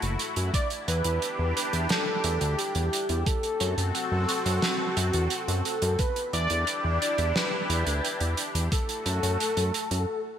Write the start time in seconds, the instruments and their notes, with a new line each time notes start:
Already playing: analog synth pad A3 E4 F#4
0.02 analog synth bass F#1, closed hi-hat
0.19 closed hi-hat
0.36 analog synth bass F#2, closed hi-hat
0.54 analog synth pad D4 G4, soft synth lead D5, kick, closed hi-hat
0.70 closed hi-hat
0.88 analog synth bass E2, soft synth lead B4, closed hi-hat
1.04 analog synth bass E2, closed hi-hat
1.22 closed hi-hat
1.39 analog synth bass E2
1.56 soft synth lead B4, closed hi-hat
1.73 analog synth bass E2, closed hi-hat
1.89 soft synth lead A4, snare, closed hi-hat
2.24 analog synth bass E2, closed hi-hat
2.41 analog synth bass D2, closed hi-hat
2.58 soft synth lead G4, closed hi-hat
2.75 analog synth bass E2, closed hi-hat
2.93 closed hi-hat
3.09 analog synth bass E2, closed hi-hat
3.26 analog synth pad C4 F#4 A4, soft synth lead A4, kick, closed hi-hat
3.43 closed hi-hat
3.60 analog synth bass F#2, closed hi-hat
3.78 analog synth bass F#2, closed hi-hat
3.94 soft synth lead F#4, closed hi-hat
4.12 analog synth bass F#2
4.29 soft synth lead F#4, closed hi-hat
4.46 analog synth bass F#2, closed hi-hat
4.62 snare, closed hi-hat
4.97 analog synth bass F#2, closed hi-hat
5.13 analog synth bass E2, closed hi-hat
5.30 closed hi-hat
5.48 analog synth bass F#2, closed hi-hat
5.65 soft synth lead A4, closed hi-hat
5.82 analog synth bass F#2, closed hi-hat
5.99 analog synth pad D4 E4 G4, soft synth lead B4, kick, closed hi-hat
6.16 closed hi-hat
6.33 analog synth bass E2, soft synth lead D5, closed hi-hat
6.50 analog synth bass E2, closed hi-hat
6.67 closed hi-hat
6.84 analog synth bass E2
7.01 soft synth lead D5, closed hi-hat
7.18 analog synth bass E2, closed hi-hat
7.35 soft synth lead B4, snare, closed hi-hat
7.70 analog synth bass E2, closed hi-hat
7.87 analog synth bass D2, closed hi-hat
8.05 closed hi-hat
8.20 analog synth bass E2, closed hi-hat
8.37 closed hi-hat
8.55 analog synth bass E2, closed hi-hat
8.72 analog synth pad A3 F#4, soft synth lead A4, kick, closed hi-hat
8.89 closed hi-hat
9.06 analog synth bass F#2, closed hi-hat
9.23 analog synth bass F#2, closed hi-hat
9.40 closed hi-hat
9.57 analog synth bass F#2, closed hi-hat
9.74 closed hi-hat
9.91 analog synth bass F#2, closed hi-hat